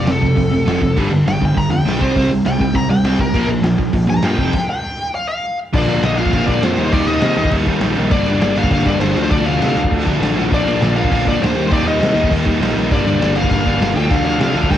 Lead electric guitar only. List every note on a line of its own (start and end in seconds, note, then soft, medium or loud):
0.11 0.96 A4 medium
1.28 1.42 G5 loud
1.45 1.57 G5 medium
1.57 1.71 A#5 medium
1.71 2.00 G5 medium
2.00 2.30 C5 loud
2.47 2.60 G5 loud
2.62 2.75 G5 medium
2.75 2.90 A#5 loud
2.91 3.19 G5 loud
3.21 3.49 A#4 loud
4.10 4.24 A#5 loud
4.25 4.68 G5 medium
4.70 5.13 G5 medium
5.15 5.27 F5 loud
5.29 5.57 F5 loud
5.76 6.02 D5 loud
6.03 6.17 D#5 loud
6.17 6.30 F5 loud
6.31 6.47 F5 loud
6.46 6.64 D5 loud
6.64 6.84 C5 medium
6.85 6.92 C5 medium
6.92 7.07 D5 loud
7.07 7.52 D#5 medium
8.12 8.58 D5 loud
8.58 8.71 F5 loud
8.72 8.87 F5 loud
8.86 8.99 D5 loud
8.99 9.22 C5 loud
9.23 9.30 C5 medium
9.30 9.46 D5 loud
9.46 9.91 F5 medium
10.54 10.94 D5 loud
10.96 11.11 F5 loud
11.13 11.26 F5 loud
11.29 11.42 D5 loud
11.42 11.64 C5 medium
11.67 11.72 C5 medium
11.72 11.87 D5 loud
11.88 12.28 D#5 medium
12.92 13.37 D5 medium
13.36 13.49 F5 loud
13.50 13.92 F5 loud
13.96 14.11 G5 loud
14.11 14.24 F5 loud
14.25 14.40 F5 loud
14.41 14.71 F5 medium
14.71 14.78 G5 medium